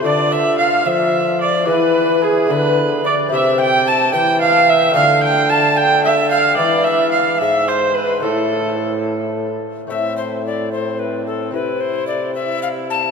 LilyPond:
<<
  \new Staff \with { instrumentName = "Recorder" } { \time 6/8 \key a \minor \tempo 4. = 73 d''8 e''8 f''8 e''4 d''8 | b'4 gis'8 b'4 d''8 | e''8 g''8 a''8 g''8 f''8 e''8 | f''8 g''8 a''8 g''8 e''8 f''8 |
d''8 e''8 f''8 e''8 c''8 b'8 | a'4. r4. | e''8 c''8 d''8 c''8 b'8 a'8 | b'8 c''8 d''8 e''8 f''8 a''8 | }
  \new Staff \with { instrumentName = "Viola" } { \time 6/8 \key a \minor d''8 e''8 f''8 e''4 d''8 | b'4 gis'8 b'4 d''8 | e''8 g''8 a''8 g''8 f''8 e''8 | f''8 g''8 a''8 g''8 e''8 f''8 |
d''8 e''8 f''8 e''8 c''8 b'8 | a'4. r4. | c'4. c'4. | e'4. e'4. | }
  \new Staff \with { instrumentName = "Lute" } { \time 6/8 \key a \minor <a f' a'>2. | <b e' gis'>4. <b e' gis'>4. | <c' e' g'>2. | <a d' f'>2. |
<gis b e'>2. | <a c' e'>2. | <a c' e'>2. | <c' e'>2. | }
  \new Staff \with { instrumentName = "Lute" } { \clef bass \time 6/8 \key a \minor d4. f4. | e4. d4 r8 | c4. e4. | d2. |
e4. gis,4. | a,2~ a,8 r8 | a,2. | c2. | }
  \new Staff \with { instrumentName = "Bassoon" } { \clef bass \time 6/8 \key a \minor d4. f4. | e4. d4 r8 | c4. e4. | d2. |
e4. gis,4. | a,2~ a,8 r8 | a,2. | c2. | }
>>